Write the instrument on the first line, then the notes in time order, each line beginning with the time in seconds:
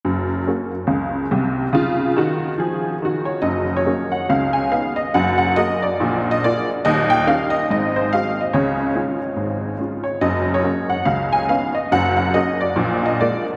honky-tonk piano
0.05 F#1 F#2
0.47 A#3 C#4 F#4
0.87 C#2 C#3
1.31 C2 C3
1.73 C#3 F4
2.16 D#3 F#4
2.58 F3 G#4
3.02 D#3 F#4
3.25 C#5
3.42 F#1 F#2 D#5
3.77 C#5
3.86 A#3 C#4 F#4
4.12 F#5
4.29 C#2 C#3 F5
4.53 G#5
4.71 B3 D#4 G#4 F5
4.96 D#5
5.14 F#1 F#2 F#5
5.38 F#5
5.56 A#3 F#4 A#4 D#5
5.82 D5
6.00 A#1 A#2
6.31 D#5
6.44 A#3 F4 G#4 D5
6.85 D#1 D#2 D#5
7.10 G5
7.27 A#3 C#4 G4 F5
7.50 D#5
7.70 G#1 G#2 D#5
7.96 C5
8.13 G#3 C4 F#4 F5
8.41 D#5
8.53 C#2 C#3 C#5
8.95 G#3 C#4 F4
9.36 G#1 G#2
9.80 G#3 C#4 F4
10.04 C#5
10.21 F#1 F#2 D#5
10.54 C#5
10.63 A#3 C#4 F#4
10.90 F#5
11.05 C#2 C#3 F5
11.33 G#5
11.49 B3 C#4 D#4 F5
11.75 D#5
11.92 F#1 F#2 F#5
12.17 F#5
12.34 A#3 C#4 F#4 D#5
12.61 D5
12.76 A#1 A#2
13.06 D#5
13.20 G#3 A#3 F4 D5